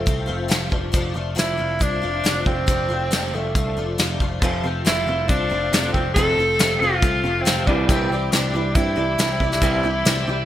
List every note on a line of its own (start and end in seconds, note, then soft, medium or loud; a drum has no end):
0.00 0.52 A3 medium
0.06 0.28 C2 medium
0.06 0.27 F3 medium
0.06 0.27 A3 medium
0.06 0.26 C4 medium
0.06 0.25 F4 medium
0.06 kick loud
0.06 closed hi-hat medium
0.26 0.50 F1 medium
0.26 0.48 F3 soft
0.26 0.48 A3 medium
0.26 0.48 C4 medium
0.26 0.48 F4 medium
0.48 0.72 F1 medium
0.48 0.71 F2 medium
0.48 0.71 C3 medium
0.48 0.71 F3 medium
0.48 0.71 A3 medium
0.48 0.71 C4 medium
0.48 0.69 F4 medium
0.48 snare loud
0.48 closed hi-hat medium
0.70 0.93 F1 medium
0.70 0.92 F3 soft
0.70 0.92 A3 soft
0.70 0.92 D4 soft
0.70 0.93 F4 medium
0.70 kick medium
0.92 1.15 F1 medium
0.92 1.15 F2 medium
0.92 1.15 C3 medium
0.92 1.15 F3 medium
0.92 1.15 A3 medium
0.92 1.14 D4 medium
0.92 1.13 F4 medium
0.92 kick loud
0.92 closed hi-hat medium
1.14 1.37 F1 medium
1.14 1.35 F3 soft
1.14 1.35 A3 soft
1.14 1.35 D4 soft
1.14 1.36 F4 medium
1.35 1.59 F1 medium
1.35 1.58 F2 medium
1.35 1.58 C3 medium
1.35 1.58 F3 medium
1.35 1.58 A3 medium
1.35 1.57 D4 medium
1.35 1.84 E4 medium
1.35 1.56 F4 medium
1.35 closed hi-hat medium
1.39 snare loud
1.57 1.81 F1 medium
1.57 1.78 F3 soft
1.57 1.79 A3 soft
1.57 1.79 D4 soft
1.57 1.80 F4 soft
1.79 2.02 C2 medium
1.79 2.02 F3 medium
1.79 2.02 A3 medium
1.79 2.02 D4 medium
1.79 2.46 D4 loud
1.79 2.00 F4 medium
1.79 kick loud
1.79 closed hi-hat medium
2.02 2.24 F1 medium
2.02 2.23 F3 soft
2.02 2.23 A3 soft
2.02 2.23 D4 soft
2.02 2.24 F4 soft
2.24 2.46 F1 medium
2.24 2.46 F2 medium
2.24 2.46 C3 medium
2.24 2.46 F3 medium
2.24 2.45 A3 medium
2.24 2.45 D4 medium
2.24 2.43 F4 medium
2.24 snare loud
2.24 closed hi-hat medium
2.45 2.67 F1 medium
2.45 2.67 F3 soft
2.45 2.67 A3 soft
2.45 3.37 C4 medium
2.45 2.67 D4 soft
2.45 2.67 F4 soft
2.45 kick medium
2.66 2.89 F1 medium
2.66 2.89 F2 medium
2.66 2.90 C3 medium
2.66 2.90 F3 medium
2.66 2.89 A3 medium
2.66 2.88 D4 medium
2.66 2.87 F4 medium
2.66 kick loud
2.66 closed hi-hat medium
2.89 3.11 F1 medium
2.89 3.10 F3 soft
2.89 3.10 A3 soft
2.89 3.10 D4 soft
2.89 3.11 F4 soft
3.11 3.33 F1 medium
3.11 3.33 F2 medium
3.11 3.33 C3 medium
3.11 3.33 F3 medium
3.11 3.34 A3 medium
3.11 3.33 D4 medium
3.11 3.32 F4 medium
3.11 snare loud
3.11 closed hi-hat medium
3.33 3.54 F1 medium
3.33 3.54 F3 soft
3.33 3.55 A3 soft
3.33 3.56 A3 medium
3.33 3.56 D4 soft
3.33 3.55 F4 soft
3.55 3.76 C2 medium
3.55 3.77 F3 medium
3.55 3.77 A3 medium
3.55 3.97 A3 medium
3.55 3.76 D4 medium
3.55 3.75 F4 medium
3.55 kick loud
3.55 closed hi-hat medium
3.77 3.98 F1 medium
3.77 3.97 F3 soft
3.77 3.97 A3 soft
3.77 3.98 D4 soft
3.77 3.98 F4 soft
3.98 4.20 F1 medium
3.98 4.20 F2 medium
3.98 4.20 C3 medium
3.98 4.20 F3 medium
3.98 4.21 A3 medium
3.98 4.20 D4 medium
3.98 4.19 F4 medium
3.98 snare loud
3.98 closed hi-hat medium
4.20 4.41 F1 medium
4.20 4.42 F3 soft
4.20 4.42 A3 soft
4.20 4.43 D4 medium
4.20 4.42 F4 medium
4.20 kick medium
4.40 4.63 F1 medium
4.40 4.64 F2 medium
4.40 4.63 F2 medium
4.40 4.64 C3 medium
4.40 4.63 C3 medium
4.40 7.63 F3 medium
4.40 4.65 F3 medium
4.40 4.63 F3 medium
4.40 7.64 A3 medium
4.40 4.64 A3 medium
4.40 7.64 C4 medium
4.40 7.63 A4 medium
4.40 kick loud
4.40 closed hi-hat medium
4.44 4.63 C4 medium
4.44 4.62 F4 medium
4.63 4.85 F1 medium
4.63 4.84 F2 medium
4.63 4.85 C3 medium
4.63 4.84 F3 soft
4.63 4.85 A3 soft
4.63 4.85 C4 soft
4.63 4.85 F4 medium
4.85 5.07 F1 medium
4.85 5.07 F2 medium
4.85 5.06 F2 medium
4.85 5.07 C3 medium
4.85 5.06 C3 medium
4.85 5.07 F3 medium
4.85 5.07 A3 medium
4.85 5.06 C4 medium
4.85 5.30 E4 medium
4.85 5.05 F4 medium
4.85 snare loud
4.85 closed hi-hat medium
5.06 5.28 F1 medium
5.06 5.28 F2 medium
5.06 5.28 C3 medium
5.06 5.27 F3 soft
5.06 5.28 A3 soft
5.06 5.28 C4 soft
5.06 5.29 F4 soft
5.28 5.50 C2 medium
5.28 5.49 F2 medium
5.28 5.49 C3 medium
5.28 5.50 F3 medium
5.28 5.50 A3 medium
5.28 5.50 C4 medium
5.28 5.93 D4 medium
5.28 5.48 F4 medium
5.28 kick loud
5.28 closed hi-hat medium
5.50 5.72 F1 medium
5.50 5.71 F2 medium
5.50 5.71 C3 medium
5.50 5.72 F3 soft
5.50 5.73 A3 soft
5.50 5.73 C4 soft
5.50 5.72 F4 medium
5.72 5.93 F1 medium
5.72 5.92 F2 medium
5.72 5.94 F2 medium
5.72 5.92 C3 medium
5.72 5.95 C3 medium
5.72 5.95 F3 medium
5.72 5.94 A3 medium
5.72 5.94 C4 medium
5.72 5.93 F4 medium
5.72 snare loud
5.72 closed hi-hat medium
5.93 6.15 F1 medium
5.93 6.14 F2 medium
5.93 6.14 C3 medium
5.93 6.17 F3 soft
5.93 6.17 A3 soft
5.93 6.14 C4 medium
5.93 6.16 C4 soft
5.93 6.16 F4 soft
5.93 kick medium
6.14 6.37 F1 medium
6.14 6.37 F2 medium
6.14 6.38 F2 medium
6.14 6.37 C3 medium
6.14 6.38 C3 medium
6.14 6.37 F3 medium
6.14 6.39 F3 medium
6.14 6.39 A3 medium
6.14 6.38 C4 medium
6.14 6.81 A4 loud
6.14 kick loud
6.14 closed hi-hat medium
6.19 6.37 F4 medium
6.37 6.58 F1 medium
6.37 6.58 F2 medium
6.37 6.58 C3 medium
6.37 6.59 F3 soft
6.37 6.60 A3 soft
6.37 6.60 C4 soft
6.37 6.60 F4 soft
6.59 6.80 F1 medium
6.59 6.79 F2 medium
6.59 6.81 F2 medium
6.59 6.79 C3 medium
6.59 6.82 C3 medium
6.59 6.82 F3 medium
6.59 6.82 A3 medium
6.59 6.82 C4 medium
6.59 6.81 F4 medium
6.59 snare loud
6.59 closed hi-hat medium
6.80 7.02 F1 medium
6.80 7.01 F2 medium
6.80 7.01 C3 medium
6.80 7.03 A3 soft
6.80 7.03 C4 soft
6.80 7.44 F4 medium
6.80 7.03 F4 medium
6.84 7.02 F3 soft
7.02 7.23 C2 medium
7.02 7.22 F2 medium
7.02 7.23 C3 medium
7.02 7.25 F3 medium
7.02 7.24 A3 medium
7.02 7.24 C4 medium
7.02 7.22 F4 medium
7.02 kick loud
7.02 closed hi-hat medium
7.24 7.45 F1 medium
7.24 7.44 F2 medium
7.24 7.44 C3 medium
7.24 7.44 F3 soft
7.24 7.45 A3 soft
7.24 7.45 C4 soft
7.24 7.45 F4 medium
7.43 7.67 F1 medium
7.43 7.67 F2 medium
7.43 7.66 F2 medium
7.43 7.67 C3 medium
7.43 7.67 F3 medium
7.43 7.68 A3 medium
7.43 7.68 C4 medium
7.43 7.67 C4 medium
7.43 7.66 F4 medium
7.43 closed hi-hat medium
7.47 7.66 C3 medium
7.47 snare loud
7.66 7.88 C2 medium
7.66 7.88 C3 medium
7.66 7.89 E3 medium
7.66 10.45 G3 medium
7.66 7.89 G3 medium
7.66 10.45 C4 medium
7.66 7.87 D4 medium
7.66 10.45 D4 medium
7.66 10.45 E4 medium
7.66 7.89 E4 soft
7.66 7.89 G4 soft
7.66 7.89 D5 soft
7.66 kick medium
7.88 8.10 C2 medium
7.88 8.09 C3 medium
7.88 8.10 E3 medium
7.88 8.10 G3 medium
7.88 8.08 C4 medium
7.88 8.11 C4 medium
7.88 8.11 E4 medium
7.88 8.11 G4 medium
7.88 8.11 D5 medium
7.88 kick loud
7.88 closed hi-hat medium
8.09 8.31 C2 medium
8.09 8.30 C3 medium
8.09 8.31 E3 medium
8.09 8.33 C4 medium
8.09 8.33 D5 medium
8.13 8.33 E4 soft
8.13 8.34 G4 soft
8.32 8.53 C2 medium
8.32 8.52 C3 medium
8.32 8.52 E3 medium
8.32 8.55 C4 medium
8.32 8.76 D4 medium
8.32 8.55 E4 medium
8.32 8.54 G4 medium
8.32 8.52 D5 medium
8.32 snare loud
8.32 closed hi-hat medium
8.54 8.75 C2 medium
8.54 8.74 C3 medium
8.54 8.74 E3 medium
8.54 8.75 E4 soft
8.54 8.75 G4 soft
8.54 8.76 D5 medium
8.75 8.96 G2 medium
8.75 8.96 C3 medium
8.75 8.96 E3 medium
8.75 8.97 C4 medium
8.75 10.45 E4 medium
8.75 8.97 E4 medium
8.75 8.96 G4 medium
8.75 8.95 D5 medium
8.75 kick loud
8.75 closed hi-hat medium
8.96 9.18 C2 medium
8.96 9.17 C3 medium
8.96 9.17 E3 medium
8.96 9.18 E4 soft
8.96 9.18 G4 soft
8.96 9.18 D5 medium
9.18 9.40 C2 medium
9.18 9.39 C3 medium
9.18 9.40 E3 medium
9.18 9.41 C4 medium
9.18 9.41 E4 medium
9.18 9.41 G4 medium
9.18 9.40 D5 medium
9.18 snare loud
9.18 closed hi-hat medium
9.40 9.61 C2 medium
9.40 9.60 C3 medium
9.40 9.61 E3 medium
9.40 9.61 E4 soft
9.40 9.62 G4 medium
9.40 9.62 D5 soft
9.40 kick medium
9.52 snare soft
9.61 9.83 C2 medium
9.61 9.83 C3 medium
9.61 9.83 E3 medium
9.61 9.83 G3 loud
9.61 9.84 C4 medium
9.61 9.84 E4 medium
9.61 9.84 G4 medium
9.61 9.82 D5 medium
9.61 kick loud
9.61 closed hi-hat medium
9.83 10.05 C2 medium
9.83 10.04 C3 medium
9.83 10.04 E3 medium
9.83 10.05 E4 soft
9.83 10.06 G4 medium
9.83 10.06 D5 medium
10.05 10.26 C2 medium
10.05 10.26 C3 medium
10.05 10.26 E3 medium
10.05 10.28 C4 medium
10.05 10.28 E4 medium
10.05 10.27 G4 medium
10.05 10.26 D5 medium
10.05 snare loud
10.05 closed hi-hat medium
10.27 10.45 C2 medium
10.27 10.45 C3 medium
10.27 10.45 E3 medium
10.27 10.45 E4 soft
10.27 10.45 G4 soft
10.27 10.45 D5 medium